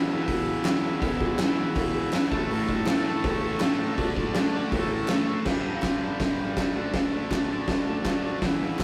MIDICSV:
0, 0, Header, 1, 4, 480
1, 0, Start_track
1, 0, Tempo, 370599
1, 1316, Time_signature, 4, 2, 24, 8
1, 11446, End_track
2, 0, Start_track
2, 0, Title_t, "Transistor combo organ"
2, 0, Program_c, 0, 18
2, 0, Note_on_c, 0, 68, 69
2, 0, Note_on_c, 0, 71, 70
2, 0, Note_on_c, 0, 76, 83
2, 2938, Note_off_c, 0, 68, 0
2, 2941, Note_off_c, 0, 76, 0
2, 2943, Note_off_c, 0, 71, 0
2, 2986, Note_on_c, 0, 69, 70
2, 2995, Note_on_c, 0, 73, 69
2, 3005, Note_on_c, 0, 76, 82
2, 5106, Note_off_c, 0, 69, 0
2, 5110, Note_off_c, 0, 73, 0
2, 5116, Note_off_c, 0, 76, 0
2, 5125, Note_on_c, 0, 69, 78
2, 5139, Note_on_c, 0, 78, 85
2, 5144, Note_on_c, 0, 74, 69
2, 6079, Note_off_c, 0, 69, 0
2, 6086, Note_off_c, 0, 78, 0
2, 6088, Note_off_c, 0, 74, 0
2, 6096, Note_on_c, 0, 69, 85
2, 6104, Note_on_c, 0, 73, 75
2, 6113, Note_on_c, 0, 76, 85
2, 7045, Note_off_c, 0, 69, 0
2, 7049, Note_off_c, 0, 73, 0
2, 7054, Note_off_c, 0, 76, 0
2, 7066, Note_on_c, 0, 67, 65
2, 7077, Note_on_c, 0, 71, 68
2, 7090, Note_on_c, 0, 74, 72
2, 8716, Note_off_c, 0, 67, 0
2, 8722, Note_off_c, 0, 71, 0
2, 8729, Note_off_c, 0, 74, 0
2, 8756, Note_on_c, 0, 66, 69
2, 8756, Note_on_c, 0, 69, 63
2, 8764, Note_on_c, 0, 74, 75
2, 10873, Note_off_c, 0, 66, 0
2, 10873, Note_off_c, 0, 69, 0
2, 10877, Note_off_c, 0, 74, 0
2, 10908, Note_on_c, 0, 68, 72
2, 10921, Note_on_c, 0, 76, 81
2, 10922, Note_on_c, 0, 71, 65
2, 11446, Note_off_c, 0, 68, 0
2, 11446, Note_off_c, 0, 71, 0
2, 11446, Note_off_c, 0, 76, 0
2, 11446, End_track
3, 0, Start_track
3, 0, Title_t, "Distorted electric guitar"
3, 0, Program_c, 1, 30
3, 0, Note_on_c, 1, 40, 83
3, 0, Note_on_c, 1, 47, 82
3, 111, Note_on_c, 1, 52, 77
3, 148, Note_off_c, 1, 47, 0
3, 163, Note_on_c, 1, 47, 62
3, 341, Note_off_c, 1, 40, 0
3, 843, Note_on_c, 1, 40, 91
3, 861, Note_off_c, 1, 47, 0
3, 876, Note_on_c, 1, 47, 92
3, 881, Note_off_c, 1, 52, 0
3, 887, Note_on_c, 1, 52, 107
3, 1056, Note_off_c, 1, 52, 0
3, 1061, Note_on_c, 1, 52, 73
3, 1094, Note_off_c, 1, 47, 0
3, 1110, Note_on_c, 1, 47, 55
3, 1284, Note_off_c, 1, 40, 0
3, 1299, Note_on_c, 1, 40, 111
3, 1314, Note_off_c, 1, 47, 0
3, 1329, Note_on_c, 1, 47, 99
3, 1350, Note_off_c, 1, 52, 0
3, 1356, Note_on_c, 1, 52, 101
3, 1779, Note_off_c, 1, 40, 0
3, 1794, Note_on_c, 1, 40, 80
3, 1811, Note_off_c, 1, 47, 0
3, 1827, Note_on_c, 1, 47, 88
3, 1840, Note_off_c, 1, 52, 0
3, 1845, Note_on_c, 1, 52, 89
3, 2033, Note_off_c, 1, 52, 0
3, 2038, Note_on_c, 1, 52, 79
3, 2072, Note_off_c, 1, 47, 0
3, 2088, Note_on_c, 1, 47, 67
3, 2275, Note_off_c, 1, 40, 0
3, 2742, Note_on_c, 1, 40, 97
3, 2751, Note_off_c, 1, 47, 0
3, 2767, Note_on_c, 1, 47, 96
3, 2778, Note_off_c, 1, 52, 0
3, 2793, Note_on_c, 1, 52, 102
3, 2975, Note_off_c, 1, 40, 0
3, 2982, Note_on_c, 1, 57, 87
3, 2987, Note_off_c, 1, 47, 0
3, 2994, Note_off_c, 1, 52, 0
3, 3010, Note_on_c, 1, 52, 81
3, 3035, Note_on_c, 1, 45, 67
3, 3209, Note_off_c, 1, 45, 0
3, 3223, Note_off_c, 1, 52, 0
3, 3225, Note_on_c, 1, 45, 93
3, 3239, Note_on_c, 1, 52, 92
3, 3267, Note_off_c, 1, 57, 0
3, 3272, Note_on_c, 1, 57, 111
3, 3685, Note_off_c, 1, 45, 0
3, 3701, Note_on_c, 1, 45, 83
3, 3719, Note_off_c, 1, 52, 0
3, 3734, Note_on_c, 1, 52, 83
3, 3750, Note_off_c, 1, 57, 0
3, 3755, Note_on_c, 1, 57, 101
3, 3934, Note_off_c, 1, 57, 0
3, 3939, Note_on_c, 1, 57, 86
3, 3971, Note_off_c, 1, 52, 0
3, 3987, Note_on_c, 1, 52, 62
3, 4188, Note_off_c, 1, 45, 0
3, 4655, Note_on_c, 1, 45, 94
3, 4668, Note_off_c, 1, 52, 0
3, 4683, Note_on_c, 1, 52, 105
3, 4686, Note_off_c, 1, 57, 0
3, 4702, Note_on_c, 1, 57, 95
3, 4877, Note_off_c, 1, 57, 0
3, 4893, Note_on_c, 1, 57, 67
3, 4923, Note_off_c, 1, 52, 0
3, 4939, Note_on_c, 1, 52, 66
3, 5112, Note_off_c, 1, 45, 0
3, 5117, Note_on_c, 1, 50, 97
3, 5129, Note_off_c, 1, 57, 0
3, 5144, Note_off_c, 1, 52, 0
3, 5149, Note_on_c, 1, 57, 93
3, 5168, Note_on_c, 1, 62, 106
3, 5589, Note_off_c, 1, 50, 0
3, 5604, Note_on_c, 1, 50, 83
3, 5613, Note_off_c, 1, 57, 0
3, 5628, Note_on_c, 1, 57, 86
3, 5646, Note_off_c, 1, 62, 0
3, 5662, Note_on_c, 1, 62, 99
3, 5842, Note_off_c, 1, 62, 0
3, 5858, Note_on_c, 1, 62, 74
3, 5887, Note_off_c, 1, 57, 0
3, 5903, Note_on_c, 1, 57, 67
3, 6084, Note_off_c, 1, 50, 0
3, 6091, Note_off_c, 1, 62, 0
3, 6103, Note_on_c, 1, 45, 98
3, 6113, Note_off_c, 1, 57, 0
3, 6126, Note_on_c, 1, 52, 117
3, 6158, Note_on_c, 1, 57, 112
3, 6583, Note_off_c, 1, 45, 0
3, 6598, Note_on_c, 1, 45, 80
3, 6612, Note_off_c, 1, 52, 0
3, 6628, Note_on_c, 1, 52, 99
3, 6632, Note_off_c, 1, 57, 0
3, 6647, Note_on_c, 1, 57, 106
3, 6807, Note_off_c, 1, 57, 0
3, 6823, Note_on_c, 1, 57, 73
3, 6852, Note_off_c, 1, 52, 0
3, 6868, Note_on_c, 1, 52, 61
3, 7053, Note_off_c, 1, 57, 0
3, 7061, Note_off_c, 1, 45, 0
3, 7064, Note_on_c, 1, 43, 91
3, 7073, Note_on_c, 1, 50, 101
3, 7074, Note_off_c, 1, 52, 0
3, 7079, Note_on_c, 1, 55, 101
3, 7295, Note_off_c, 1, 43, 0
3, 7309, Note_off_c, 1, 50, 0
3, 7311, Note_on_c, 1, 43, 78
3, 7316, Note_off_c, 1, 55, 0
3, 7324, Note_on_c, 1, 50, 81
3, 7331, Note_on_c, 1, 55, 90
3, 7537, Note_off_c, 1, 43, 0
3, 7539, Note_off_c, 1, 50, 0
3, 7553, Note_on_c, 1, 43, 102
3, 7555, Note_on_c, 1, 50, 110
3, 7559, Note_off_c, 1, 55, 0
3, 7574, Note_on_c, 1, 55, 107
3, 7782, Note_off_c, 1, 43, 0
3, 7794, Note_off_c, 1, 50, 0
3, 7798, Note_on_c, 1, 43, 75
3, 7800, Note_off_c, 1, 55, 0
3, 7809, Note_on_c, 1, 50, 90
3, 7816, Note_on_c, 1, 55, 92
3, 8016, Note_off_c, 1, 43, 0
3, 8024, Note_off_c, 1, 50, 0
3, 8031, Note_on_c, 1, 43, 78
3, 8039, Note_off_c, 1, 55, 0
3, 8040, Note_on_c, 1, 50, 98
3, 8054, Note_on_c, 1, 55, 103
3, 8264, Note_off_c, 1, 43, 0
3, 8270, Note_off_c, 1, 50, 0
3, 8278, Note_off_c, 1, 55, 0
3, 8279, Note_on_c, 1, 43, 92
3, 8286, Note_on_c, 1, 50, 101
3, 8294, Note_on_c, 1, 55, 120
3, 8495, Note_off_c, 1, 43, 0
3, 8503, Note_off_c, 1, 50, 0
3, 8511, Note_on_c, 1, 43, 80
3, 8517, Note_off_c, 1, 55, 0
3, 8518, Note_on_c, 1, 50, 73
3, 8533, Note_on_c, 1, 55, 85
3, 8716, Note_off_c, 1, 50, 0
3, 8732, Note_off_c, 1, 55, 0
3, 8732, Note_on_c, 1, 50, 77
3, 8737, Note_on_c, 1, 57, 101
3, 8738, Note_off_c, 1, 43, 0
3, 8751, Note_on_c, 1, 62, 103
3, 8964, Note_off_c, 1, 50, 0
3, 8979, Note_on_c, 1, 50, 95
3, 8981, Note_off_c, 1, 57, 0
3, 8986, Note_off_c, 1, 62, 0
3, 8996, Note_on_c, 1, 57, 92
3, 9001, Note_on_c, 1, 62, 100
3, 9204, Note_off_c, 1, 50, 0
3, 9207, Note_off_c, 1, 57, 0
3, 9220, Note_on_c, 1, 50, 81
3, 9222, Note_on_c, 1, 57, 82
3, 9230, Note_off_c, 1, 62, 0
3, 9246, Note_on_c, 1, 62, 77
3, 9435, Note_off_c, 1, 50, 0
3, 9440, Note_off_c, 1, 57, 0
3, 9451, Note_off_c, 1, 62, 0
3, 9451, Note_on_c, 1, 50, 93
3, 9456, Note_on_c, 1, 57, 99
3, 9466, Note_on_c, 1, 62, 106
3, 9677, Note_off_c, 1, 50, 0
3, 9684, Note_off_c, 1, 57, 0
3, 9693, Note_on_c, 1, 50, 83
3, 9696, Note_off_c, 1, 62, 0
3, 9699, Note_on_c, 1, 57, 90
3, 9711, Note_on_c, 1, 62, 86
3, 9933, Note_off_c, 1, 50, 0
3, 9942, Note_off_c, 1, 57, 0
3, 9949, Note_on_c, 1, 50, 92
3, 9956, Note_off_c, 1, 62, 0
3, 9958, Note_on_c, 1, 57, 95
3, 9971, Note_on_c, 1, 62, 112
3, 10158, Note_off_c, 1, 50, 0
3, 10168, Note_off_c, 1, 57, 0
3, 10173, Note_on_c, 1, 50, 96
3, 10176, Note_off_c, 1, 62, 0
3, 10183, Note_on_c, 1, 57, 97
3, 10192, Note_on_c, 1, 62, 106
3, 10389, Note_off_c, 1, 50, 0
3, 10398, Note_off_c, 1, 57, 0
3, 10404, Note_on_c, 1, 50, 74
3, 10412, Note_off_c, 1, 62, 0
3, 10414, Note_on_c, 1, 57, 89
3, 10428, Note_on_c, 1, 62, 90
3, 10641, Note_off_c, 1, 50, 0
3, 10653, Note_off_c, 1, 57, 0
3, 10657, Note_on_c, 1, 50, 80
3, 10668, Note_off_c, 1, 62, 0
3, 10668, Note_on_c, 1, 57, 84
3, 10683, Note_on_c, 1, 62, 80
3, 10892, Note_off_c, 1, 50, 0
3, 10896, Note_on_c, 1, 40, 88
3, 10897, Note_off_c, 1, 57, 0
3, 10905, Note_off_c, 1, 62, 0
3, 10908, Note_on_c, 1, 47, 115
3, 10919, Note_on_c, 1, 52, 97
3, 11138, Note_off_c, 1, 40, 0
3, 11144, Note_on_c, 1, 40, 80
3, 11145, Note_off_c, 1, 47, 0
3, 11160, Note_off_c, 1, 52, 0
3, 11160, Note_on_c, 1, 47, 78
3, 11166, Note_on_c, 1, 52, 90
3, 11369, Note_off_c, 1, 40, 0
3, 11374, Note_on_c, 1, 40, 101
3, 11375, Note_off_c, 1, 47, 0
3, 11383, Note_off_c, 1, 52, 0
3, 11388, Note_on_c, 1, 52, 105
3, 11391, Note_on_c, 1, 47, 99
3, 11446, Note_off_c, 1, 40, 0
3, 11446, Note_off_c, 1, 47, 0
3, 11446, Note_off_c, 1, 52, 0
3, 11446, End_track
4, 0, Start_track
4, 0, Title_t, "Drums"
4, 360, Note_on_c, 9, 46, 64
4, 362, Note_on_c, 9, 36, 113
4, 489, Note_off_c, 9, 46, 0
4, 491, Note_off_c, 9, 36, 0
4, 836, Note_on_c, 9, 46, 57
4, 839, Note_on_c, 9, 38, 107
4, 844, Note_on_c, 9, 39, 105
4, 966, Note_off_c, 9, 46, 0
4, 969, Note_off_c, 9, 38, 0
4, 973, Note_off_c, 9, 39, 0
4, 1317, Note_on_c, 9, 46, 65
4, 1319, Note_on_c, 9, 36, 126
4, 1446, Note_off_c, 9, 46, 0
4, 1449, Note_off_c, 9, 36, 0
4, 1560, Note_on_c, 9, 36, 95
4, 1690, Note_off_c, 9, 36, 0
4, 1794, Note_on_c, 9, 46, 63
4, 1796, Note_on_c, 9, 38, 104
4, 1801, Note_on_c, 9, 39, 103
4, 1923, Note_off_c, 9, 46, 0
4, 1926, Note_off_c, 9, 38, 0
4, 1930, Note_off_c, 9, 39, 0
4, 2266, Note_on_c, 9, 46, 67
4, 2277, Note_on_c, 9, 36, 120
4, 2395, Note_off_c, 9, 46, 0
4, 2407, Note_off_c, 9, 36, 0
4, 2756, Note_on_c, 9, 46, 70
4, 2758, Note_on_c, 9, 38, 102
4, 2759, Note_on_c, 9, 39, 88
4, 2885, Note_off_c, 9, 46, 0
4, 2888, Note_off_c, 9, 38, 0
4, 2888, Note_off_c, 9, 39, 0
4, 3001, Note_on_c, 9, 36, 111
4, 3130, Note_off_c, 9, 36, 0
4, 3247, Note_on_c, 9, 46, 70
4, 3377, Note_off_c, 9, 46, 0
4, 3479, Note_on_c, 9, 36, 93
4, 3609, Note_off_c, 9, 36, 0
4, 3707, Note_on_c, 9, 46, 69
4, 3710, Note_on_c, 9, 38, 98
4, 3712, Note_on_c, 9, 39, 99
4, 3837, Note_off_c, 9, 46, 0
4, 3839, Note_off_c, 9, 38, 0
4, 3841, Note_off_c, 9, 39, 0
4, 4190, Note_on_c, 9, 46, 65
4, 4197, Note_on_c, 9, 36, 127
4, 4319, Note_off_c, 9, 46, 0
4, 4327, Note_off_c, 9, 36, 0
4, 4667, Note_on_c, 9, 39, 102
4, 4667, Note_on_c, 9, 46, 61
4, 4669, Note_on_c, 9, 38, 114
4, 4796, Note_off_c, 9, 39, 0
4, 4796, Note_off_c, 9, 46, 0
4, 4799, Note_off_c, 9, 38, 0
4, 5148, Note_on_c, 9, 46, 61
4, 5154, Note_on_c, 9, 36, 110
4, 5278, Note_off_c, 9, 46, 0
4, 5284, Note_off_c, 9, 36, 0
4, 5395, Note_on_c, 9, 36, 93
4, 5524, Note_off_c, 9, 36, 0
4, 5626, Note_on_c, 9, 46, 58
4, 5629, Note_on_c, 9, 38, 101
4, 5642, Note_on_c, 9, 39, 99
4, 5756, Note_off_c, 9, 46, 0
4, 5758, Note_off_c, 9, 38, 0
4, 5772, Note_off_c, 9, 39, 0
4, 6114, Note_on_c, 9, 46, 68
4, 6115, Note_on_c, 9, 36, 119
4, 6243, Note_off_c, 9, 46, 0
4, 6244, Note_off_c, 9, 36, 0
4, 6584, Note_on_c, 9, 39, 97
4, 6584, Note_on_c, 9, 46, 56
4, 6586, Note_on_c, 9, 38, 108
4, 6713, Note_off_c, 9, 39, 0
4, 6713, Note_off_c, 9, 46, 0
4, 6716, Note_off_c, 9, 38, 0
4, 7062, Note_on_c, 9, 49, 119
4, 7064, Note_on_c, 9, 38, 106
4, 7070, Note_on_c, 9, 36, 113
4, 7191, Note_off_c, 9, 49, 0
4, 7194, Note_off_c, 9, 38, 0
4, 7200, Note_off_c, 9, 36, 0
4, 7545, Note_on_c, 9, 39, 93
4, 7547, Note_on_c, 9, 46, 52
4, 7549, Note_on_c, 9, 38, 107
4, 7550, Note_on_c, 9, 36, 108
4, 7674, Note_off_c, 9, 39, 0
4, 7676, Note_off_c, 9, 46, 0
4, 7679, Note_off_c, 9, 38, 0
4, 7680, Note_off_c, 9, 36, 0
4, 8029, Note_on_c, 9, 36, 113
4, 8030, Note_on_c, 9, 46, 58
4, 8032, Note_on_c, 9, 38, 122
4, 8039, Note_on_c, 9, 39, 58
4, 8158, Note_off_c, 9, 36, 0
4, 8159, Note_off_c, 9, 46, 0
4, 8162, Note_off_c, 9, 38, 0
4, 8169, Note_off_c, 9, 39, 0
4, 8504, Note_on_c, 9, 46, 53
4, 8506, Note_on_c, 9, 36, 115
4, 8507, Note_on_c, 9, 38, 109
4, 8523, Note_on_c, 9, 39, 96
4, 8634, Note_off_c, 9, 46, 0
4, 8636, Note_off_c, 9, 36, 0
4, 8637, Note_off_c, 9, 38, 0
4, 8652, Note_off_c, 9, 39, 0
4, 8981, Note_on_c, 9, 46, 57
4, 8984, Note_on_c, 9, 38, 121
4, 8985, Note_on_c, 9, 36, 110
4, 9111, Note_off_c, 9, 46, 0
4, 9113, Note_off_c, 9, 38, 0
4, 9114, Note_off_c, 9, 36, 0
4, 9465, Note_on_c, 9, 36, 107
4, 9466, Note_on_c, 9, 46, 56
4, 9469, Note_on_c, 9, 38, 100
4, 9478, Note_on_c, 9, 39, 94
4, 9595, Note_off_c, 9, 36, 0
4, 9596, Note_off_c, 9, 46, 0
4, 9598, Note_off_c, 9, 38, 0
4, 9607, Note_off_c, 9, 39, 0
4, 9942, Note_on_c, 9, 46, 63
4, 9945, Note_on_c, 9, 36, 109
4, 9945, Note_on_c, 9, 38, 116
4, 9953, Note_on_c, 9, 39, 62
4, 10071, Note_off_c, 9, 46, 0
4, 10074, Note_off_c, 9, 36, 0
4, 10074, Note_off_c, 9, 38, 0
4, 10082, Note_off_c, 9, 39, 0
4, 10418, Note_on_c, 9, 46, 56
4, 10421, Note_on_c, 9, 38, 104
4, 10425, Note_on_c, 9, 36, 100
4, 10437, Note_on_c, 9, 39, 102
4, 10547, Note_off_c, 9, 46, 0
4, 10550, Note_off_c, 9, 38, 0
4, 10555, Note_off_c, 9, 36, 0
4, 10566, Note_off_c, 9, 39, 0
4, 10902, Note_on_c, 9, 46, 62
4, 10905, Note_on_c, 9, 38, 119
4, 10906, Note_on_c, 9, 36, 113
4, 11032, Note_off_c, 9, 46, 0
4, 11034, Note_off_c, 9, 38, 0
4, 11035, Note_off_c, 9, 36, 0
4, 11387, Note_on_c, 9, 39, 102
4, 11389, Note_on_c, 9, 36, 94
4, 11391, Note_on_c, 9, 46, 58
4, 11394, Note_on_c, 9, 38, 105
4, 11446, Note_off_c, 9, 36, 0
4, 11446, Note_off_c, 9, 38, 0
4, 11446, Note_off_c, 9, 39, 0
4, 11446, Note_off_c, 9, 46, 0
4, 11446, End_track
0, 0, End_of_file